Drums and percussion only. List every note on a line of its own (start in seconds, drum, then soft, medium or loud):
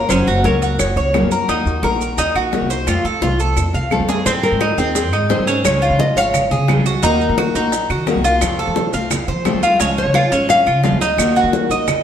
0.10 high bongo medium
0.10 high conga soft
0.10 claves medium
0.10 maracas medium
0.28 maracas soft
0.44 high bongo medium
0.44 high conga medium
0.44 maracas soft
0.62 high bongo soft
0.62 high conga soft
0.62 maracas medium
0.79 high bongo medium
0.79 high conga soft
0.79 claves medium
0.79 maracas medium
0.97 high bongo soft
0.97 high conga soft
0.97 maracas soft
1.14 high bongo medium
1.14 low bongo medium
1.14 high conga medium
1.14 claves medium
1.14 maracas soft
1.31 high conga medium
1.31 maracas medium
1.49 high bongo medium
1.49 maracas medium
1.66 high conga soft
1.66 maracas soft
1.83 high bongo medium
1.83 high conga medium
1.83 claves medium
1.83 maracas soft
2.01 high bongo soft
2.01 high conga soft
2.01 maracas medium
2.18 high bongo medium
2.18 high conga soft
2.18 maracas medium
2.35 high bongo soft
2.35 high conga soft
2.35 claves medium
2.35 maracas soft
2.53 high bongo medium
2.53 low bongo medium
2.53 high conga medium
2.53 maracas soft
2.70 high bongo soft
2.70 maracas medium
2.87 high bongo medium
2.87 claves medium
2.87 maracas medium
3.05 high conga soft
3.05 maracas soft
3.22 high bongo medium
3.22 high conga medium
3.22 maracas soft
3.39 high bongo soft
3.39 high conga soft
3.39 maracas medium
3.57 high bongo medium
3.57 claves medium
3.57 maracas medium
3.74 high conga soft
3.74 maracas soft
3.91 low bongo medium
3.91 high conga medium
3.91 claves medium
3.91 maracas soft
4.09 low bongo medium
4.09 high conga medium
4.09 maracas medium
4.26 high bongo medium
4.26 high conga soft
4.26 maracas medium
4.43 high conga soft
4.43 maracas soft
4.61 high bongo medium
4.61 high conga medium
4.61 claves medium
4.61 maracas soft
4.78 high bongo soft
4.78 high conga soft
4.78 maracas medium
4.95 high bongo medium
4.95 high conga soft
4.95 maracas medium
5.13 high bongo soft
5.13 high conga soft
5.13 claves medium
5.13 maracas soft
5.30 high bongo medium
5.30 low bongo medium
5.30 high conga medium
5.30 maracas soft
5.47 high bongo soft
5.47 high conga soft
5.47 maracas medium
5.65 high bongo medium
5.65 high conga soft
5.65 claves medium
5.65 maracas medium
5.82 high conga soft
5.82 maracas soft
5.99 high bongo medium
5.99 high conga medium
5.99 maracas soft
6.17 high bongo soft
6.17 high conga soft
6.17 maracas medium
6.34 high bongo medium
6.34 high conga soft
6.34 low conga medium
6.34 claves medium
6.34 maracas medium
6.51 high bongo soft
6.51 high conga soft
6.51 low conga medium
6.51 maracas soft
6.68 high bongo medium
6.68 low bongo medium
6.68 high conga medium
6.68 claves medium
6.68 maracas soft
6.86 high conga medium
6.86 maracas medium
7.03 high bongo medium
7.03 maracas medium
7.21 high conga soft
7.21 maracas soft
7.37 high bongo medium
7.37 high conga medium
7.37 claves medium
7.37 maracas soft
7.55 high bongo soft
7.55 high conga soft
7.55 maracas medium
7.72 high bongo medium
7.72 high conga soft
7.72 maracas medium
7.89 high bongo soft
7.89 high conga soft
7.89 claves medium
7.89 maracas soft
8.07 high bongo medium
8.07 low bongo medium
8.07 high conga medium
8.07 maracas soft
8.24 high bongo soft
8.24 high conga soft
8.24 maracas medium
8.41 high bongo medium
8.41 high conga soft
8.41 claves medium
8.41 maracas medium
8.59 high conga soft
8.59 maracas soft
8.76 high bongo medium
8.76 high conga medium
8.76 maracas soft
8.93 high bongo soft
8.93 high conga soft
8.93 maracas medium
9.11 high bongo medium
9.11 high conga soft
9.11 low conga medium
9.11 claves medium
9.11 maracas medium
9.28 high bongo soft
9.28 high conga soft
9.28 low conga medium
9.28 maracas soft
9.45 high bongo medium
9.45 low bongo medium
9.45 high conga medium
9.45 claves medium
9.45 maracas soft
9.63 high conga medium
9.63 maracas medium
9.80 high bongo medium
9.80 high conga soft
9.80 maracas medium
9.97 high conga soft
9.97 maracas soft
10.14 high bongo medium
10.14 high conga medium
10.14 claves medium
10.14 maracas soft
10.32 high bongo soft
10.32 high conga soft
10.32 maracas medium
10.49 high bongo medium
10.49 high conga soft
10.49 maracas medium
10.66 high bongo soft
10.66 high conga soft
10.66 claves medium
10.66 maracas soft
10.84 high bongo medium
10.84 low bongo medium
10.84 high conga medium
10.84 maracas soft
11.01 high bongo soft
11.01 high conga soft
11.01 maracas medium
11.18 high bongo medium
11.18 high conga soft
11.18 claves medium
11.18 maracas medium
11.36 high conga soft
11.36 maracas soft
11.53 high bongo medium
11.53 high conga medium
11.53 maracas soft
11.70 high bongo soft
11.70 high conga soft
11.70 maracas medium
11.88 high bongo medium
11.88 high conga soft
11.88 low conga medium
11.88 claves medium
11.88 maracas medium